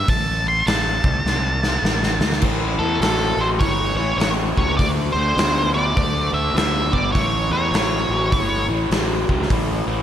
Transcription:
0.08 fingered electric bass A1, lead electric guitar A5, kick, open hi-hat
0.48 lead electric guitar C6
0.66 fingered electric bass A1, lead electric guitar A5, snare, open hi-hat
1.04 fingered electric bass C2, kick
1.24 fingered electric bass C2, snare
1.63 snare
1.82 fingered electric bass A1, snare
2.03 snare
2.19 fingered electric bass D2, snare
2.32 snare
2.42 fingered electric bass A1, overdriven electric guitar A2 E3, kick, crash
2.79 fingered electric bass E2, overdriven electric guitar A2 E3, lead electric guitar A4
2.99 fingered electric bass A1, overdriven electric guitar A2 F#3, lead electric guitar A4, snare, open hi-hat
3.37 fingered electric bass A1, overdriven electric guitar A2 F#3, lead electric guitar C5
3.60 fingered electric bass G1, overdriven electric guitar A2 E3, lead electric guitar C#5, kick, open hi-hat
3.95 fingered electric bass A1, overdriven electric guitar A2 E3, lead electric guitar C#5
4.16 fingered electric bass A1, overdriven electric guitar A2 F#3, lead electric guitar C#5, open hi-hat
4.21 snare
4.56 fingered electric bass C#2, overdriven electric guitar A2 F#3, lead electric guitar C#5, kick
4.77 fingered electric bass D2, overdriven electric guitar D3 A3, lead electric guitar D5, kick, open hi-hat
5.13 fingered electric bass D2, overdriven electric guitar D3, lead electric guitar C5
5.17 overdriven electric guitar A3
5.36 fingered electric bass D2, overdriven electric guitar D3 B3, snare, open hi-hat
5.74 overdriven electric guitar D3 B3, lead electric guitar D5
5.96 fingered electric bass D2, overdriven electric guitar D3 A3, kick, open hi-hat
6.33 fingered electric bass D2, overdriven electric guitar D3 A3, lead electric guitar E5
6.54 fingered electric bass D2, overdriven electric guitar D3 B3, lead electric guitar E5, open hi-hat
6.58 snare
6.92 fingered electric bass G1, overdriven electric guitar D3 B3, lead electric guitar D5, kick
7.12 fingered electric bass A1, overdriven electric guitar A2 E3, lead electric guitar C#5, kick, open hi-hat
7.50 fingered electric bass E2, overdriven electric guitar A2 E3, lead electric guitar C#5
7.71 fingered electric bass A1, overdriven electric guitar A2 F#3, open hi-hat
7.75 snare
8.09 fingered electric bass A1, overdriven electric guitar A2 F#3
8.32 fingered electric bass G1, overdriven electric guitar A2 E3, kick, open hi-hat
8.68 fingered electric bass A1, overdriven electric guitar A2 E3
8.90 fingered electric bass A1, overdriven electric guitar A2 F#3, snare, open hi-hat
9.29 fingered electric bass C#2, overdriven electric guitar A2 F#3, kick
9.42 snare
9.50 fingered electric bass A1, overdriven electric guitar A2 E3, kick, open hi-hat
9.86 fingered electric bass A1, overdriven electric guitar A2 E3

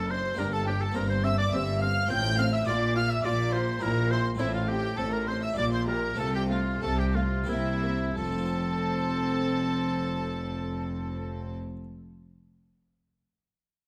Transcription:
Already playing: double bass section F#1, harpsichord F#2 A3 D4, cello section F#2, oboe A4, violin section A5
0.09 viola section D4, violin section C5 C6, oboe C5
0.34 harpsichord A#3 D4 G4, viola section D4, violin section A#4
0.38 double bass section G1, harpsichord G2, cello section G2, oboe A#4, violin section A#5
0.52 violin section A4 A5, oboe A4
0.66 viola section D4, violin section G4 G5, oboe G4
0.81 violin section A4 A5, oboe A4
0.91 double bass section G1, harpsichord A#3 C4 G4, violin section A#4
0.95 cello section G2, harpsichord G2, viola section C4, oboe A#4, violin section A#5
1.09 violin section C5 C6, oboe C5
1.24 viola section C4, oboe E5, violin section E5 E6
1.38 oboe D5, violin section D5 D6
1.52 double bass section G1, cello section G2, harpsichord G2, viola section C4, violin section E5 E6, oboe E5
1.81 viola section C4, violin section F5 F6, oboe F5
2.06 harpsichord A3 C4 F4, viola section C4, violin section G5
2.10 double bass section A1, cello section A2, harpsichord A2, oboe G5, violin section G6
2.38 viola section C4, violin section F5 F6, oboe F5
2.53 oboe E5, violin section E5 E6
2.65 double bass section A#1, harpsichord A#2 D4 F4, cello section A#2, viola section F4, oboe D5, violin section D5 D6
2.95 viola section F4, violin section F5 F6, oboe F5
3.10 violin section E5 E6, oboe E5
3.24 double bass section A#1, cello section A#2, harpsichord A#2, viola section F4, violin section D5 D6, oboe D5
3.53 viola section F4, violin section C5 C6, oboe C5
3.79 double bass section A#1, cello section A#2, harpsichord A#2 C4 E4, viola section E4, violin section A#4 A#5, oboe A#4
4.10 viola section E4, violin section C5 C6, oboe C5
4.35 harpsichord A3 C4 F4
4.39 double bass section A1, harpsichord A2, cello section A2, viola section C4, oboe E4, violin section E4 E5
4.54 violin section F4 F5, oboe F4
4.68 viola section C4, violin section G4 G5, oboe G4
4.97 double bass section A1, cello section A2, harpsichord A2, viola section C4, violin section A4 A5, oboe A4
5.12 violin section A#4 A#5, oboe A#4
5.27 viola section C4, violin section C5 C6, oboe C5
5.42 violin section E5 E6, oboe E5
5.55 double bass section A#1, cello section A#2, harpsichord A#2 D4 F4, viola section G3, violin section D5 D6, oboe D5
5.72 violin section C5 C6, oboe C5
5.87 viola section G3, violin section A#4 A#5, oboe A#4
6.14 harpsichord A3 C4 F4
6.18 double bass section C2, harpsichord C3, cello section C3, viola section A3, violin section A4 A5, oboe A4
6.34 violin section G4 G5, oboe G4
6.49 viola section A3, violin section F4 F5, oboe F4
6.81 double bass section C2, harpsichord C3, cello section C3, viola section A3, violin section A4 A5, oboe A4
6.97 violin section G4 G5, oboe G4
7.13 viola section A3, violin section F4 F5, oboe F4
7.44 harpsichord A#3 C4 G4, violin section E4
7.48 double bass section C2, cello section C3, harpsichord C3, viola section A#3, oboe E4, violin section E5
7.82 viola section A#3
8.16 double bass section F1, cello section F2, harpsichord F3, viola section C4, violin section A4 A5, oboe A4
8.24 harpsichord A3
8.31 harpsichord C4
8.38 harpsichord F4
8.45 harpsichord C5

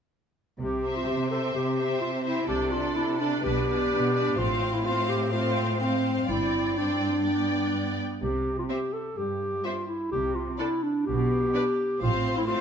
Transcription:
0.60 double bass section C2, cello section C3, clarinet G4
0.84 viola section C4, violin section C5 E5
0.97 clarinet F4
1.07 cello section C3, clarinet G4
1.31 viola section C4, clarinet A4, violin section C5 E5
1.54 cello section C3, clarinet G4
1.78 viola section C4, violin section C5 E5
2.01 cello section C3, clarinet F4
2.24 viola section C4, clarinet E4, violin section C5 E5
2.48 double bass section C2, cello section C3, viola section D4, clarinet G4, violin section A4 D5
2.71 viola section D4, clarinet F4, violin section A4 D5
2.95 cello section C3, clarinet E4
3.20 clarinet D4, viola section D4, violin section A4 D5
3.44 double bass section B1, cello section B2, viola section D4, clarinet G4, violin section B4 D5
3.68 viola section D4, violin section B4 D5
3.92 cello section B2
4.15 viola section D4, violin section B4 D5
4.38 double bass section A1, cello section A2, viola section C4, clarinet F4, violin section C5 F5
4.74 clarinet E4
4.84 viola section C4, clarinet F4, violin section C5 F5
5.09 clarinet G4
5.32 viola section C4, clarinet F4, violin section C5 F5
5.79 clarinet C4, viola section C4, violin section C5 F5
6.27 double bass section G1, cello section G2, viola section C4, clarinet E4, violin section D5 G5
6.76 viola section C4, clarinet D4, violin section D5 G5
7.24 viola section B3, violin section D5 G5
8.21 double bass section C2, cello section C3, clarinet G4
8.59 clarinet F4
8.69 viola section C4, clarinet G4, violin section C5 E5
8.93 clarinet A4
9.17 cello section G2, clarinet G4
9.65 viola section C4, clarinet F4, violin section C5 E5
9.87 clarinet E4
10.11 double bass section C2, cello section C3, clarinet G4
10.35 clarinet F4
10.58 viola section D4, clarinet E4, violin section A4 D5
10.83 clarinet D4
11.06 double bass section B1, cello section B2, clarinet G4
11.54 viola section D4, violin section B4 D5
12.01 double bass section A1, cello section A2, viola section C4, clarinet F4, violin section C5 F5
12.37 clarinet E4
12.47 viola section C4, clarinet F4, violin section C5 F5

